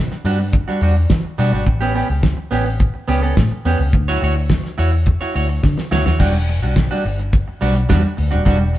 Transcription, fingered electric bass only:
0.24 0.60 G2 medium
0.81 1.05 E2 medium
1.10 1.22 E3 medium
1.39 1.50 B2 medium
1.52 1.64 G#1 medium
1.67 2.02 A1 loud
2.10 2.33 C#2 medium
2.52 2.87 A1 medium
3.08 3.32 C#2 medium
3.37 3.49 A2 loud
3.65 3.77 E2 medium
3.79 3.91 C#2 medium
3.93 4.17 D2 medium
4.22 4.57 D2 medium
4.79 5.14 E2 medium
5.36 5.59 D2 medium
5.64 5.75 D3 medium
5.92 6.03 D2 medium
6.06 6.18 D#2 medium
6.20 6.63 E1 medium
6.63 6.86 B1 medium
7.05 7.40 G1 medium
7.62 7.85 B1 medium
7.90 8.02 E2 loud
8.18 8.30 D2 loud
8.33 8.44 D#1 loud
8.46 8.79 E1 loud

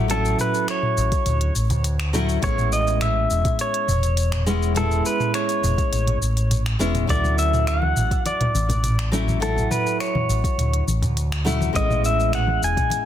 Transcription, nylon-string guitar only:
0.08 1.51 F#3 medium
0.08 1.52 A3 medium
0.08 1.52 C#4 medium
0.08 1.53 E4 medium
2.13 2.39 F#3 medium
2.13 2.39 A3 medium
2.13 2.40 C#4 medium
2.13 2.40 E4 loud
2.42 3.85 G#3 medium
2.42 3.85 B3 medium
2.42 3.85 C#4 medium
2.42 3.86 E4 medium
4.46 4.72 G#3 loud
4.46 4.73 B3 medium
4.46 4.73 C#4 medium
4.46 4.73 E4 loud
4.75 6.17 G#3 medium
4.75 6.18 B3 medium
4.75 6.18 C#4 medium
4.75 6.19 E4 medium
6.79 7.05 G#3 medium
6.79 7.05 B3 medium
6.79 7.06 C#4 medium
6.79 7.06 E4 loud
7.07 8.50 F#3 medium
7.07 8.51 A3 medium
7.07 8.51 C#4 medium
7.07 8.52 E4 medium
9.12 9.38 F#3 medium
9.12 9.38 A3 medium
9.12 9.38 C#4 medium
9.12 9.39 E4 loud
9.40 10.83 F#3 medium
9.40 10.84 A3 medium
9.40 10.84 C#4 medium
9.40 10.85 E4 medium
11.45 11.71 F#3 loud
11.45 11.71 A3 medium
11.45 11.72 C#4 medium
11.45 11.72 E4 loud
11.73 13.05 G#3 medium
11.73 13.05 B3 medium
11.73 13.05 C#4 medium
11.73 13.05 E4 medium

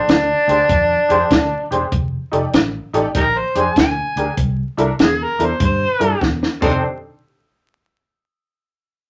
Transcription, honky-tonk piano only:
0.48 0.59 D4 medium
0.48 0.59 G4 medium
0.48 0.59 G#4 medium
0.48 0.59 C5 medium
1.09 1.20 D4 medium
1.09 1.20 G4 medium
1.09 1.20 G#4 medium
1.09 1.21 C5 loud
1.71 1.81 D4 medium
1.71 1.82 G4 medium
1.71 1.82 G#4 medium
1.71 1.82 C5 medium
2.32 2.42 D#4 medium
2.32 2.43 G4 medium
2.32 2.43 A4 medium
2.32 2.43 D5 medium
2.93 3.04 D#4 medium
2.93 3.04 G4 medium
2.93 3.05 A4 medium
2.93 3.05 D5 loud
3.55 3.66 D4 medium
3.55 3.66 G4 medium
3.55 3.66 G#4 medium
3.55 3.66 C5 medium
4.17 4.27 D4 medium
4.17 4.27 G4 medium
4.17 4.28 G#4 medium
4.17 4.28 A#4 medium
4.77 4.88 D4 medium
4.77 4.88 E4 medium
4.77 4.89 A4 medium
4.77 4.89 A#4 medium
5.39 5.49 D4 medium
5.39 5.50 E4 medium
5.39 5.50 A4 medium
5.39 5.50 A#4 medium
5.99 6.10 D4 medium
5.99 6.11 E4 medium
5.99 6.11 A4 medium
5.99 6.11 A#4 medium
6.62 6.81 D4 medium
6.62 6.81 D#4 medium
6.62 6.81 G4 medium
6.62 6.81 A4 medium

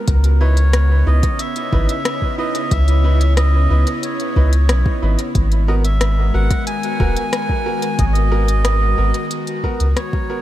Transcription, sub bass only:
0.08 1.03 C#2 loud
1.07 1.21 C#2 medium
1.73 1.87 G#1 loud
2.72 3.67 C#2 loud
3.70 3.85 C#2 medium
4.36 4.71 C#2 loud
4.69 4.84 B1 medium
5.02 5.17 G#1 medium
5.35 6.31 G#1 loud
6.34 6.49 G#1 medium
7.00 7.15 D#1 loud
7.99 8.95 G#1 loud
8.98 9.12 G#1 medium
9.80 9.95 C#2 medium

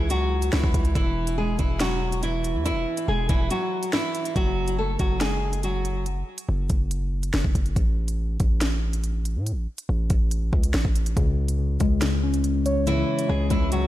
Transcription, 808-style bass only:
0.00 0.50 C#2 loud
0.53 0.63 C#2 loud
0.64 0.73 C#2 loud
0.74 0.95 C#2 loud
0.95 1.57 E1 loud
1.59 2.56 E1 loud
2.55 2.72 E2 loud
2.71 2.86 E1 loud
3.08 3.29 E1 loud
3.29 3.50 E1 loud
4.36 4.97 F#1 loud
5.00 6.23 F#1 loud
6.49 6.69 F#1 loud
6.70 7.31 F#1 loud
7.34 7.44 F#1 loud
7.45 7.54 F#1 loud
7.55 7.75 F#1 loud
7.76 8.38 A1 loud
8.40 9.37 A1 loud
9.36 9.53 A2 loud
9.52 9.67 A1 loud
9.89 10.09 A1 loud
10.10 10.51 A1 loud
10.53 10.73 C#2 loud
10.74 10.84 A1 loud
10.85 11.15 A1 loud
11.17 11.78 C#2 loud
11.81 13.04 C#2 loud
13.29 13.50 C#2 loud
13.51 13.87 C#2 loud

